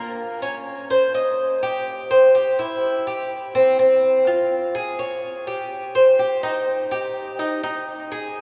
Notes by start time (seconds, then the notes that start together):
Already playing: A#3
0.42 C#4
0.90 C5
1.14 D#5
1.63 G4
2.11 C5
2.35 G4
2.59 E4
3.07 G4
3.55 C4
3.79 C4
4.27 F4
4.75 G#4
4.99 C#5
5.47 G4
5.95 C5
6.19 G4
6.43 D#4
6.91 G4
7.39 D#4
7.63 D#4
8.12 G#4